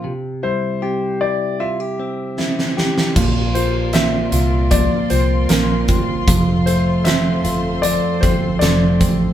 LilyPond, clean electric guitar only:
\new Staff \with { instrumentName = "Clean electric guitar" } { \time 4/4 \key bes \lydian \tempo 4 = 77 c8 e'8 g'8 e'8 f'16 g'16 c'8 e'8 g'8 | <bes, f'>8 bes8 c'8 f'8 f8 c'8 bes8 c'8 | <f, f'>8 a8 c'8 f'8 f8 c'8 a8 c'8 | }